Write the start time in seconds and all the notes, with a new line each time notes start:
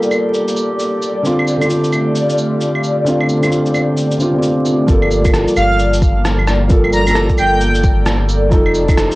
Already playing: G3 A#3 F4 G4 A4 D5
0.02 shaker
0.11 cabasa, claves
0.34 shaker
0.48 shaker
0.57 cabasa
0.79 shaker
1.02 cabasa, shaker
1.23 D3 C4, shaker
1.27 F4
1.33 A3
1.39 claves
1.47 cabasa
1.57 D3 C4
1.61 F4, claves, shaker
1.70 shaker
1.80 F4
1.84 shaker
1.93 cabasa, claves
2.15 shaker
2.30 shaker
2.38 cabasa
2.61 shaker
2.75 claves
2.83 cabasa
3.04 D3 C4, shaker
3.08 F4
3.20 claves
3.29 cabasa
3.39 D3 C4
3.43 claves, shaker
3.47 F4
3.52 shaker
3.66 shaker
3.74 cabasa, claves
3.97 shaker
4.11 shaker
4.18 D3 C4, cabasa
4.22 F4
4.30 D3 C4
4.38 F4
4.43 shaker
4.66 cabasa, shaker
4.87 G1 F3 G3 A#3 A4, kick, shaker
5.02 claves
5.11 cabasa
5.19 F3 A#3
5.25 A#3, kick, claves, shaker
5.29 A4
5.34 cross-stick, shaker
5.41 A4
5.48 shaker
5.56 G1 F5, cabasa, claves
5.79 shaker
5.94 shaker
6.02 kick, cabasa
6.25 cross-stick, shaker
6.39 claves
6.47 cross-stick, cabasa
6.68 G1 F3 A#3 A4, kick, shaker
6.84 claves
6.93 A#5, cabasa
7.03 F3
7.07 A#3 A4, claves, shaker
7.15 cross-stick, shaker
7.29 kick, shaker
7.38 G1 G5, cabasa, claves
7.61 shaker
7.75 shaker
7.84 kick, cabasa
8.06 cross-stick, shaker
8.29 cabasa
8.49 F1 F3 D#4, kick, shaker
8.53 A4
8.66 claves
8.70 C4
8.74 cabasa
8.79 G4
8.84 F3
8.88 D#4 A4, kick, claves, shaker
8.98 cross-stick, shaker
9.11 shaker